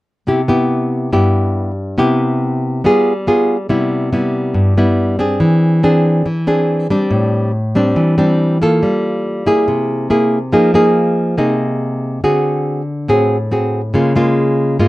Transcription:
0.27 C3 B3 E4 G4
0.48 B3 E4 G4
1.12 G2 B3 E4 G4
1.98 C3 B3 E4 G4
2.84 G3 B3 F4 G#4
3.27 B3 F4 G#4
3.69 C3 G3 B3 E4
4.13 G3 B3 E4
4.54 G2
4.77 G3 B3 E4
5.19 C4 D4 G#4
5.40 E3
5.83 C4 D4 G#4
6.26 E3
6.47 C4 D4 G#4
6.90 G3 C4 D4
7.11 A2
7.75 G3 C4 D4
7.96 E3
8.18 G3 C4 D4
8.62 A#3 F4 A4
8.83 G3
9.46 A#3 E4 G#4
9.68 C3
10.10 A#3 E4 G#4
10.53 F3 A#3 D#4 G#4
10.74 A#3 D#4 G#4
11.38 C3 A#3 D#4 G#4
12.24 D3 C4 F#4 G#4
13.08 A2 C4 F#4 G#4
13.52 C4 F#4 G#4
13.94 C#3 G#3 A#3 F4
14.16 G#3 A#3 F4
14.79 G#2 G#3 A#3 F4

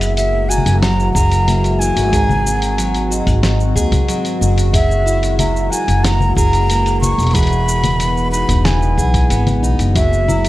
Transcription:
Already playing: F#1 E3 F#3 G#3 A#3 E4 F#4 G#4 E5 F#5
0.01 open hi-hat, shaker
0.17 A#3 F#4 E5, open hi-hat, shaker
0.49 F#4 G#5 A#5, shaker
0.58 low conga
0.66 F#1, open hi-hat, shaker
0.81 F#3 F#5 A#5, snare, open hi-hat, shaker
1.00 shaker
1.14 F#1 G#4 F#5 A#5, kick, shaker
1.32 open hi-hat, shaker
1.48 A#3 E5, open hi-hat, low conga, shaker
1.64 open hi-hat, shaker
1.79 E4 F#4 G#5, shaker
1.96 G#1 F#4, open hi-hat, shaker
2.13 G#2 D#3 G#3 C4 G#4 A#5, kick, open hi-hat, shaker
2.29 low conga, shaker
2.46 C4 F#5, shaker
2.62 open hi-hat, shaker
2.78 F#3 F#5, open hi-hat, shaker
2.94 open hi-hat, shaker
3.11 F#4 D#5, shaker
3.27 G#1, kick, open hi-hat, shaker
3.43 G#2 F#4, snare, open hi-hat, shaker
3.60 shaker
3.76 D#2 G#4 F#5, kick, shaker
3.92 kick, open hi-hat, low conga, shaker
4.08 F#3 F#5, open hi-hat, shaker
4.25 open hi-hat, shaker
4.41 F#1 F#4 F#5, shaker
4.58 open hi-hat, shaker
4.73 E3 F#3 A#3 G#4 E5 F#5, kick, open hi-hat, shaker
4.91 shaker
5.06 E4 F#4, shaker
5.23 open hi-hat, shaker
5.38 A#3 E5 A#5, open hi-hat, low conga, shaker
5.56 shaker
5.71 F#4 F#5 G#5, shaker
5.88 F#1, open hi-hat, shaker
6.04 F#3 F#5 A#5, snare, open hi-hat, shaker
6.20 low conga, shaker
6.36 F#1 G#4 F#5 A#5, kick, shaker
6.53 open hi-hat, shaker
6.69 A#3 F#4, open hi-hat, shaker
6.86 open hi-hat, shaker
7.01 F#4 A#5 C#6, low conga, shaker
7.18 E1, open hi-hat, shaker
7.23 open hi-hat
7.27 open hi-hat
7.31 B3 F#5 B5, kick, open hi-hat
7.35 E3 G#4, open hi-hat, shaker
7.39 open hi-hat
7.43 open hi-hat
7.47 open hi-hat
7.52 shaker
7.68 E4, shaker
7.84 open hi-hat, low conga, shaker
8.00 B3, open hi-hat, shaker
8.17 shaker
8.32 D#4 F#4 B5, shaker
8.49 E1, kick, open hi-hat, shaker
8.65 E3 G#5 B5, snare, open hi-hat, low conga, shaker
8.82 shaker
8.98 B1 G#4 F#5, kick, shaker
9.14 kick, open hi-hat, shaker
9.30 G#1 B3 F#5, open hi-hat, shaker
9.47 open hi-hat, low conga, shaker
9.62 B1 D#4 F#5, shaker
9.79 F#1, open hi-hat, shaker
9.95 E3 F#3 A#3 F#4 G#4 E5, kick, open hi-hat, shaker
10.13 shaker
10.28 E4 A#5, low conga, shaker
10.45 open hi-hat, shaker

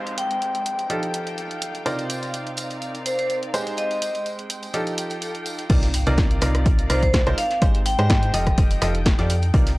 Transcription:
Already playing: G#3 C4 D#4 G4 G#4 A#4 C5 D5 F5, downlifter
0.07 closed hi-hat
0.18 G5, closed hi-hat
0.24 G#3 G5
0.31 closed hi-hat
0.42 closed hi-hat
0.55 closed hi-hat
0.66 closed hi-hat
0.79 closed hi-hat
0.90 F3 D#4 F4 G4 A4, closed hi-hat
1.03 closed hi-hat
1.08 A4
1.14 closed hi-hat
1.27 closed hi-hat
1.33 F5
1.38 closed hi-hat
1.51 closed hi-hat
1.62 closed hi-hat
1.75 closed hi-hat
1.86 C3 C4 D#4 F4 A#4 C5 D5, closed hi-hat, tambourine
1.99 closed hi-hat, tambourine
2.10 closed hi-hat, tambourine
2.23 closed hi-hat, tambourine
2.34 closed hi-hat, tambourine
2.47 closed hi-hat
2.57 closed hi-hat, tambourine
2.62 A#4 D5
2.70 closed hi-hat, tambourine
2.82 closed hi-hat, tambourine
2.95 closed hi-hat, tambourine
3.06 C5, closed hi-hat, tambourine
3.19 C5, closed hi-hat, tambourine
3.30 closed hi-hat, tambourine
3.43 closed hi-hat
3.54 G#3 D#4 G4 G#4 C5, closed hi-hat, tambourine
3.67 closed hi-hat, tambourine
3.77 D#5, closed hi-hat, tambourine
3.91 closed hi-hat, tambourine
4.02 closed hi-hat, tambourine
4.08 G#3 G5
4.15 closed hi-hat, tambourine
4.26 closed hi-hat, tambourine
4.39 closed hi-hat
4.50 closed hi-hat, tambourine
4.63 closed hi-hat, tambourine
4.74 F3 D#4 F4 G4 A4, closed hi-hat, tambourine
4.87 closed hi-hat, tambourine
4.98 closed hi-hat, tambourine
5.05 A4
5.10 closed hi-hat, tambourine
5.15 F5
5.22 closed hi-hat, tambourine
5.35 closed hi-hat
5.46 closed hi-hat, tambourine
5.58 closed hi-hat, tambourine
5.70 C2 C3 D#4 F4 A#4 D5, kick, closed hi-hat, crash, impact
5.83 snare, open hi-hat
5.94 closed hi-hat, open hi-hat
6.01 A#4
6.07 C2 C3 D#4 F4 A#4 D5, closed hi-hat
6.17 kick, snare, closed hi-hat
6.31 closed hi-hat
6.41 C2 C3 D#4 F4 A#4 D5, cross-stick, snare, closed hi-hat, open hi-hat
6.46 D5
6.55 cross-stick, closed hi-hat
6.66 kick, closed hi-hat
6.79 closed hi-hat
6.90 C2 C3 D#4 F4 A#4 C5 D5, cross-stick, open hi-hat
7.03 C5, kick, closed hi-hat
7.13 kick, snare, closed hi-hat
7.27 C2 G#3 D#4 F4 A#4 C5, snare, closed hi-hat
7.38 C4 F5, closed hi-hat, open hi-hat
7.51 snare, closed hi-hat
7.62 G#1 G#3 D#4 G4 G#4 C5, kick, closed hi-hat
7.75 closed hi-hat
7.86 G5, closed hi-hat, open hi-hat
7.92 G5
7.99 G#2 G#3 D#4 G4 G#4 C5, closed hi-hat
8.10 kick, snare, closed hi-hat
8.23 closed hi-hat
8.34 F1 F3 F4 G4 A4 D#5, closed hi-hat, open hi-hat
8.47 kick, cross-stick, closed hi-hat
8.58 D#4, kick, closed hi-hat
8.71 closed hi-hat, open hi-hat
8.81 F1 F3 F4 G4 A4 D#5, cross-stick, snare, closed hi-hat, open hi-hat
8.94 A4, closed hi-hat
9.05 kick, snare, closed hi-hat
9.19 F2 F3 F4 G4 A4 D5, snare, closed hi-hat
9.30 closed hi-hat, open hi-hat
9.42 closed hi-hat
9.54 C2 C3 D#4 F4 A#4 D5, kick, closed hi-hat
9.67 snare, open hi-hat

